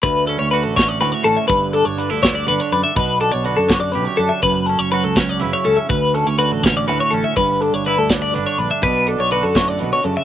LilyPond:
<<
  \new Staff \with { instrumentName = "Clean electric guitar" } { \time 6/8 \key d \major \tempo 4. = 82 b'8 a'16 cis''16 b'16 a'16 cis''16 d''16 b'16 cis''16 a'16 e''16 | b'8 a'16 cis''16 b'16 a'16 cis''16 d''16 b'16 cis''16 b'16 e''16 | b'8 a'16 cis''16 b'16 a'16 cis''16 d''16 b'16 cis''16 a'16 e''16 | b'8 a'16 cis''16 b'16 a'16 cis''16 d''16 b'16 cis''16 a'16 e''16 |
b'8 a'16 cis''16 b'16 a'16 cis''16 d''16 b'16 cis''16 a'16 e''16 | b'8 a'16 cis''16 b'16 a'16 cis''16 d''16 b'16 cis''16 b'16 e''16 | b'8 a'16 cis''16 b'16 a'16 cis''16 d''16 b'16 cis''16 a'16 e''16 | }
  \new Staff \with { instrumentName = "Clean electric guitar" } { \time 6/8 \key d \major << { r8 cis'8 fis'8 cis'8 fis'8 cis'8 | r8 d'8 d'16 e'16 d'8 d'8 d'8 | r8 d'8 fis'8 d'8 g'8 d'8 | r8 cis'8 fis'8 cis'8 e'8 cis'8 |
r8 cis'8 fis'8 cis'8 fis'8 cis'8 | r8 d'8 e'8 d'8 d'8 d'8 | r8 d'8 fis'2 | } \\ { d,4 d4 a,4 | g,4 d4 d4 | b,4 d4 fis,4 | fis,4 fis4 cis4 |
d,4 d4 a,4 | g,4 d4 d4 | b,4 d8 a,8 b,8 cis8 | } >> }
  \new Staff \with { instrumentName = "Fingered electric bass" } { \clef bass \time 6/8 \key d \major d,8. d,8 a,,8. d,16 r16 a,,16 r16 | g,,8. g,,8 d,8. g,,16 r16 fis,16 r16 | b,,8. b,,8 fis,8. b,,16 r16 fis,16 r16 | fis,,8. fis,,8 cis,8. fis,,16 r16 cis,16 r16 |
d,8. d,8 a,,8. d,16 r16 a,,16 r16 | g,,8. g,,8 d,8. g,,16 r16 bes,,16 r16 | b,,8. b,,8 fis,8. b,,16 r16 fis,16 r16 | }
  \new DrumStaff \with { instrumentName = "Drums" } \drummode { \time 6/8 <hh bd>8 hh8 hh8 <hh bd sn>8 hh8 hh8 | <hh bd>8 hh8 hh8 <hh bd sn>8 hh8 hh8 | <hh bd>8 hh8 hh8 <hh bd sn>8 hh8 hh8 | <hh bd>8 hh8 hh8 <hh bd sn>8 hh8 hh8 |
<hh bd>8 hh8 hh8 <hh bd sn>8 hh8 hh8 | <hh bd>8 hh8 hh8 <hh bd sn>8 hh8 hh8 | <hh bd>8 hh8 hh8 <hh bd sn>8 hh8 hh8 | }
>>